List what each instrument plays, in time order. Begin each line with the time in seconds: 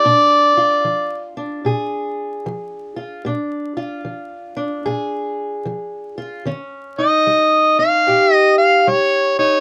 Already playing: harmonica D5
0.05 steel-string acoustic guitar A#2 D4
0.57 steel-string acoustic guitar F4
0.85 steel-string acoustic guitar F3
1.37 steel-string acoustic guitar D4
1.65 steel-string acoustic guitar A#2 G#4
2.46 steel-string acoustic guitar F3
2.96 steel-string acoustic guitar F4
3.25 steel-string acoustic guitar A#2 D4
3.77 steel-string acoustic guitar F4
4.05 steel-string acoustic guitar F3
4.57 steel-string acoustic guitar D4
4.86 steel-string acoustic guitar A#2 G#4
5.65 steel-string acoustic guitar F3
6.18 steel-string acoustic guitar F4
6.45 steel-string acoustic guitar D#3 C#4
6.98 steel-string acoustic guitar D#4, harmonica D#5
7.27 steel-string acoustic guitar G3
7.79 steel-string acoustic guitar C#4, harmonica F5
8.07 steel-string acoustic guitar A#2 G4
8.34 harmonica D#5
8.58 harmonica F5
8.87 steel-string acoustic guitar G3, harmonica C#5
9.39 steel-string acoustic guitar D#4, harmonica C#5